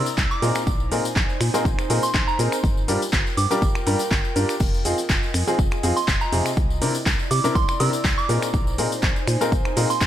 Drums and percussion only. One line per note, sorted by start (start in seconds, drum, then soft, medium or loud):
0.06 tambourine medium
0.06 cabasa soft
0.18 kick loud
0.18 clap loud
0.18 tambourine medium
0.18 cabasa soft
0.31 tambourine soft
0.42 open hi-hat medium
0.42 cabasa medium
0.55 finger snap medium
0.55 tambourine medium
0.55 cabasa soft
0.67 kick loud
0.67 tambourine medium
0.67 cabasa soft
0.80 tambourine soft
0.92 open hi-hat loud
0.92 cabasa medium
1.05 tambourine medium
1.05 cabasa soft
1.16 kick loud
1.16 clap loud
1.16 tambourine medium
1.16 cabasa soft
1.29 tambourine soft
1.41 finger snap medium
1.41 open hi-hat medium
1.41 cabasa medium
1.54 tambourine medium
1.54 cabasa soft
1.65 kick loud
1.65 tambourine medium
1.65 cabasa soft
1.79 finger snap medium
1.79 tambourine soft
1.90 open hi-hat loud
1.90 cabasa medium
2.03 tambourine medium
2.03 cabasa soft
2.14 kick loud
2.14 clap loud
2.14 tambourine medium
2.14 cabasa soft
2.29 tambourine soft
2.39 open hi-hat medium
2.39 cabasa medium
2.52 finger snap medium
2.52 tambourine medium
2.52 cabasa soft
2.64 kick loud
2.64 tambourine medium
2.64 cabasa soft
2.77 tambourine soft
2.88 open hi-hat loud
2.88 cabasa medium
3.02 tambourine medium
3.02 cabasa soft
3.13 kick loud
3.13 clap loud
3.13 tambourine medium
3.13 cabasa soft
3.27 tambourine soft
3.37 open hi-hat medium
3.37 cabasa medium
3.51 tambourine medium
3.51 cabasa soft
3.62 kick loud
3.62 tambourine medium
3.62 cabasa soft
3.75 finger snap medium
3.75 tambourine soft
3.87 open hi-hat loud
3.87 cabasa medium
3.99 tambourine medium
3.99 cabasa soft
4.11 kick loud
4.11 clap loud
4.11 tambourine medium
4.11 cabasa soft
4.25 tambourine soft
4.36 open hi-hat medium
4.36 cabasa medium
4.49 finger snap medium
4.49 tambourine medium
4.49 cabasa soft
4.60 kick loud
4.60 crash medium
4.60 tambourine medium
4.60 cabasa soft
4.74 tambourine soft
4.85 open hi-hat loud
4.85 cabasa medium
4.98 tambourine medium
4.98 cabasa soft
5.09 kick loud
5.09 clap loud
5.09 tambourine medium
5.09 cabasa soft
5.23 tambourine soft
5.34 finger snap medium
5.34 open hi-hat loud
5.34 cabasa medium
5.48 tambourine medium
5.48 cabasa soft
5.59 kick loud
5.59 tambourine medium
5.59 cabasa soft
5.71 finger snap medium
5.71 tambourine soft
5.83 open hi-hat loud
5.83 cabasa medium
5.97 tambourine medium
5.97 cabasa soft
6.08 kick loud
6.08 clap loud
6.08 tambourine medium
6.08 cabasa soft
6.21 tambourine soft
6.32 open hi-hat medium
6.32 cabasa medium
6.46 finger snap medium
6.46 tambourine medium
6.46 cabasa soft
6.57 kick loud
6.57 tambourine medium
6.57 cabasa soft
6.70 tambourine soft
6.82 open hi-hat loud
6.82 cabasa medium
6.95 tambourine medium
6.95 cabasa soft
7.06 kick loud
7.06 clap loud
7.06 tambourine medium
7.06 cabasa soft
7.19 tambourine soft
7.31 open hi-hat loud
7.31 cabasa medium
7.45 tambourine medium
7.45 cabasa soft
7.55 kick loud
7.55 tambourine medium
7.55 cabasa soft
7.68 finger snap medium
7.68 tambourine soft
7.80 open hi-hat loud
7.80 cabasa medium
7.93 tambourine medium
7.93 cabasa soft
8.05 kick loud
8.05 clap loud
8.05 tambourine medium
8.05 cabasa soft
8.19 tambourine soft
8.29 open hi-hat medium
8.29 cabasa medium
8.42 finger snap medium
8.42 tambourine medium
8.42 cabasa soft
8.54 kick loud
8.54 tambourine medium
8.54 cabasa soft
8.67 tambourine soft
8.78 open hi-hat loud
8.78 cabasa medium
8.92 tambourine medium
8.92 cabasa soft
9.02 kick loud
9.02 clap loud
9.02 tambourine medium
9.02 cabasa soft
9.16 tambourine soft
9.28 finger snap medium
9.28 open hi-hat loud
9.28 cabasa medium
9.41 tambourine medium
9.41 cabasa soft
9.52 kick loud
9.52 tambourine medium
9.52 cabasa soft
9.65 finger snap medium
9.65 tambourine soft
9.77 open hi-hat loud
9.77 cabasa medium
9.90 tambourine medium
9.90 cabasa soft
10.01 kick loud
10.01 clap loud
10.01 tambourine medium
10.01 cabasa soft